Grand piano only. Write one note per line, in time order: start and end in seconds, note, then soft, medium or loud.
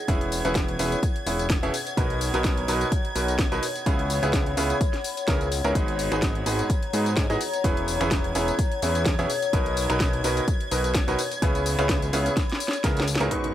0.08 0.42 E3 loud
0.08 0.42 B3 medium
0.08 0.42 C#4 medium
0.08 0.42 E4 medium
0.08 0.42 G#4 medium
0.08 0.42 B4 loud
0.45 0.77 E3 medium
0.45 0.77 B3 medium
0.45 0.77 C#4 medium
0.45 0.77 E4 medium
0.45 0.77 G#4 medium
0.45 0.77 B4 loud
0.79 0.98 E3 medium
0.79 0.98 B3 medium
0.79 0.98 C#4 medium
0.79 0.98 E4 medium
0.79 0.98 G#4 medium
0.79 0.98 B4 loud
1.26 1.45 E3 medium
1.26 1.45 B3 medium
1.26 1.45 C#4 medium
1.26 1.45 E4 medium
1.26 1.45 G#4 medium
1.26 1.45 B4 medium
1.63 1.72 B2 loud
1.63 1.72 B3 medium
1.63 1.72 C#4 loud
1.63 1.72 E4 medium
1.63 1.72 G#4 loud
1.63 1.72 E5 loud
1.97 2.31 B2 loud
1.97 2.31 B3 medium
1.97 2.31 D#4 medium
1.97 2.31 F#4 medium
1.97 2.31 A#4 medium
1.97 2.31 B4 loud
2.34 2.66 B2 medium
2.34 2.66 B3 medium
2.34 2.66 D#4 medium
2.34 2.66 F#4 medium
2.34 2.66 A#4 medium
2.34 2.66 B4 loud
2.68 2.87 B2 medium
2.68 2.87 B3 medium
2.68 2.87 D#4 medium
2.68 2.87 F#4 medium
2.68 2.87 A#4 medium
2.68 2.87 B4 loud
3.15 3.34 B2 medium
3.15 3.34 B3 medium
3.15 3.34 D#4 medium
3.15 3.34 F#4 medium
3.15 3.34 A#4 medium
3.15 3.34 B4 medium
3.52 3.62 B2 loud
3.52 3.62 B3 medium
3.52 3.62 D#4 medium
3.52 3.62 F#4 medium
3.52 3.62 A#4 medium
3.52 3.62 B4 loud
3.86 4.20 C#3 loud
3.86 4.20 B3 medium
3.86 4.20 C#4 medium
3.86 4.20 E4 medium
3.86 4.20 G#4 medium
3.86 4.20 B4 loud
4.23 4.55 C#3 medium
4.23 4.55 B3 medium
4.23 4.55 C#4 medium
4.23 4.55 E4 medium
4.23 4.55 G#4 medium
4.23 4.55 B4 loud
4.57 4.76 C#3 loud
4.57 4.76 B3 medium
4.57 4.76 C#4 medium
4.57 4.76 E4 medium
4.57 4.76 G#4 medium
4.57 4.76 B4 loud
5.28 5.47 C#3 medium
5.28 5.47 B3 medium
5.28 5.47 C#4 medium
5.28 5.47 E4 medium
5.28 5.47 G#4 medium
5.28 5.47 A#4 loud
5.64 5.74 G#2 medium
5.64 5.74 B3 medium
5.64 5.74 C#4 medium
5.64 5.74 E4 medium
5.64 5.74 G#4 medium
5.64 5.74 A#4 loud
5.75 6.09 G#2 loud
5.75 6.09 B3 medium
5.75 6.09 D#4 medium
5.75 6.09 F#4 medium
5.75 6.09 G#4 medium
5.75 6.09 B4 loud
6.12 6.44 G#2 medium
6.12 6.44 B3 medium
6.12 6.44 D#4 medium
6.12 6.44 F#4 medium
6.12 6.44 G#4 medium
6.12 6.44 B4 loud
6.46 6.65 G#2 medium
6.46 6.65 B3 medium
6.46 6.65 D#4 medium
6.46 6.65 F#4 medium
6.46 6.65 G#4 medium
6.46 6.65 B4 loud
6.93 7.12 G#2 medium
6.93 7.12 B3 medium
6.93 7.12 D#4 medium
6.93 7.12 F#4 medium
6.93 7.12 G#4 medium
6.93 7.12 B4 medium
7.30 7.39 E3 loud
7.30 7.39 B3 medium
7.30 7.39 D#4 medium
7.30 7.39 F#4 medium
7.30 7.39 G#4 medium
7.30 7.39 D#5 loud
7.64 7.98 E3 loud
7.64 7.98 B3 loud
7.64 7.98 C#4 medium
7.64 7.98 E4 medium
7.64 7.98 G#4 medium
7.64 7.98 B4 loud
8.01 8.33 E3 medium
8.01 8.33 B3 medium
8.01 8.33 C#4 medium
8.01 8.33 E4 medium
8.01 8.33 G#4 medium
8.01 8.33 B4 loud
8.35 8.54 E3 loud
8.35 8.54 B3 medium
8.35 8.54 C#4 medium
8.35 8.54 E4 medium
8.35 8.54 G#4 medium
8.35 8.54 B4 loud
8.82 9.01 E3 medium
8.82 9.01 B3 medium
8.82 9.01 C#4 medium
8.82 9.01 E4 medium
8.82 9.01 G#4 medium
8.82 9.01 B4 medium
9.19 9.28 B2 loud
9.19 9.28 B3 medium
9.19 9.28 C#4 medium
9.19 9.28 E4 medium
9.19 9.28 G#4 medium
9.19 9.28 E5 loud
9.53 9.87 B2 loud
9.53 9.87 B3 medium
9.53 9.87 D#4 medium
9.53 9.87 F#4 medium
9.53 9.87 A#4 medium
9.53 9.87 B4 loud
9.90 10.22 B2 medium
9.90 10.22 B3 medium
9.90 10.22 D#4 medium
9.90 10.22 F#4 medium
9.90 10.22 A#4 medium
9.90 10.22 B4 loud
10.24 10.43 B2 loud
10.24 10.43 B3 medium
10.24 10.43 D#4 medium
10.24 10.43 F#4 medium
10.24 10.43 A#4 medium
10.24 10.43 B4 loud
10.71 10.90 B2 medium
10.71 10.90 B3 medium
10.71 10.90 D#4 medium
10.71 10.90 F#4 medium
10.71 10.90 A#4 medium
10.71 10.90 B4 medium
11.08 11.18 B2 loud
11.08 11.18 B3 medium
11.08 11.18 D#4 medium
11.08 11.18 F#4 medium
11.08 11.18 A#4 medium
11.08 11.18 B4 loud
11.42 11.76 C#3 loud
11.42 11.76 B3 medium
11.42 11.76 C#4 medium
11.42 11.76 E4 medium
11.42 11.76 G#4 medium
11.42 11.76 B4 loud
11.79 12.11 C#3 medium
11.79 12.11 B3 medium
11.79 12.11 C#4 medium
11.79 12.11 E4 medium
11.79 12.11 G#4 medium
11.79 12.11 B4 loud
12.13 12.32 C#3 loud
12.13 12.32 B3 medium
12.13 12.32 C#4 medium
12.13 12.32 E4 medium
12.13 12.32 G#4 medium
12.13 12.32 B4 loud
12.84 13.02 C#3 medium
12.84 13.02 B3 medium
12.84 13.02 C#4 medium
12.84 13.02 E4 medium
12.84 13.02 G#4 medium
12.84 13.02 A#4 loud
13.20 13.30 G#2 loud
13.20 13.30 B3 medium
13.20 13.30 C#4 medium
13.20 13.30 E4 medium
13.20 13.30 G#4 medium
13.20 13.30 A#4 loud
13.31 13.54 G#2 medium
13.31 13.54 B3 medium
13.31 13.54 D#4 medium
13.31 13.54 F#4 medium
13.31 13.54 G#4 medium
13.31 13.54 B4 medium